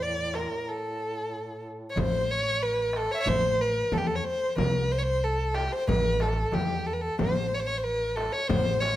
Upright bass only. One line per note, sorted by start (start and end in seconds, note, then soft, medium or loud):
0.00 0.45 E2 medium
1.97 3.06 A1 medium
3.27 3.81 A1 medium
3.92 4.19 E2 medium
4.58 5.67 C2 medium
5.89 6.43 A1 loud
6.53 7.08 E2 medium
7.19 8.28 A1 medium
8.50 8.96 A1 medium